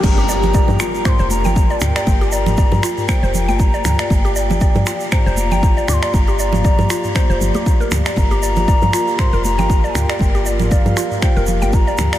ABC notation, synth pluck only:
X:1
M:4/4
L:1/16
Q:"Swing 16ths" 1/4=118
K:Gm
V:1 name="Synth pluck"
z G d z d z F z c c z g z d z d | z G d z d z F z c c z g z d z d | z G d z d z F z c c z g z d z d | z G d z d z F z c c z G z B z d |
z G d z d z F z c B z g z d z d | z G d z d z F z c B z g z d z d |]